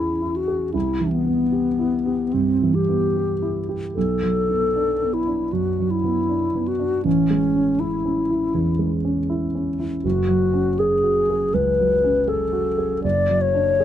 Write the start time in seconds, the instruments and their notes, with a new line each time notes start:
Already playing: grand piano E2 E3 C#4 E4 G#4, alto flute E4
0.22 grand piano E4
0.36 alto flute F#4
0.48 grand piano G#4
0.74 grand piano C2, alto flute E4
1.00 grand piano E3
1.12 alto flute B3
1.25 grand piano B3
1.52 grand piano G4
1.79 grand piano E4
2.06 grand piano G4
2.33 grand piano G2, alto flute C4
2.62 grand piano E3
2.74 alto flute G4
2.89 grand piano B3
3.16 grand piano G4
3.42 grand piano E4
3.69 grand piano G4
3.95 grand piano B1, alto flute A4
4.23 grand piano F#3
4.50 grand piano B3
4.76 grand piano D4
5.02 grand piano B3
5.14 alto flute E4
5.27 grand piano D4
5.53 grand piano F#2, alto flute F#4
5.79 grand piano F#3
5.91 alto flute E4
6.04 grand piano B3
6.29 grand piano D4
6.55 grand piano B3
6.68 alto flute F#4
6.79 grand piano D4
7.05 grand piano A1, alto flute C#4
7.30 grand piano G#3
7.56 grand piano C#4
7.80 alto flute E4, grand piano E4
8.05 grand piano C#4
8.30 grand piano E4
8.54 grand piano E2
8.79 grand piano G#3
9.05 grand piano C#4
9.30 grand piano E4
9.55 grand piano C#4
9.80 grand piano E4
10.04 grand piano F#1, alto flute F#4
10.28 grand piano F#3
10.53 grand piano C#4
10.79 alto flute G#4, grand piano G#4
11.04 grand piano F#4
11.30 grand piano G#4
11.54 grand piano C#2, alto flute B4
11.80 grand piano F#3
12.04 grand piano C#4
12.28 grand piano G#4, alto flute A4
12.53 grand piano F#4
12.78 grand piano G#4
13.04 grand piano F#1, alto flute D5
13.29 grand piano F#3
13.41 alto flute C#5
13.54 grand piano D4
13.80 grand piano G#4